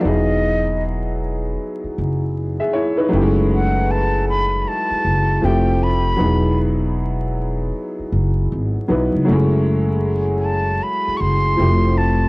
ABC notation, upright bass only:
X:1
M:4/4
L:1/16
Q:"Swing 16ths" 1/4=78
K:E
V:1 name="Upright bass" clef=bass
E,,,8 z2 F,,,3 z3 | F,,,8 z2 F,,,2 =F,,,4 | E,,,8 z2 F,,,2 G,,, z B,,, C,, | F,,,8 z2 F,,,2 =F,,,4 |]